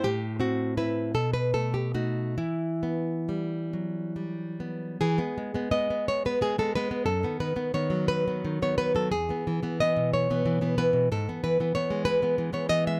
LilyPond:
\new Staff \with { instrumentName = "Nylon-string guitar" } { \time 6/8 \key e \minor \tempo 4. = 59 << { g'8 fis'8 b'8 a'16 b'16 a'16 g'16 fis'8 | e'2~ e'8 r8 | \key e \major gis'4 dis''8 cis''16 b'16 gis'16 a'16 b'8 | a'8 b'8 cis''8 b'8. cis''16 b'16 a'16 |
gis'4 dis''8 cis''4 b'8 | a'8 b'8 cis''8 b'8. cis''16 dis''16 e''16 | } \\ { a,8 c'8 <c' e'>8 b,8 a8 <a dis'>8 | e8 b8 g8 fis8 g8 b8 | e16 <gis b>16 gis16 <gis b>16 <gis b>16 b8 <gis b>16 gis16 <gis b>16 <gis b>16 b16 | fis,16 <dis b>16 dis16 <dis b>16 <dis b>16 fis8 <dis b>16 dis16 <dis b>16 <dis b>16 fis16 |
e,16 <e b>16 e16 <e b>16 <e b>16 b,8 <e b>16 e16 <e b>16 <e b>16 b,16 | gis,16 <e b>16 e16 <e b>16 <e b>16 gis8 <e b>16 e16 <e b>16 <e b>16 gis16 | } >> }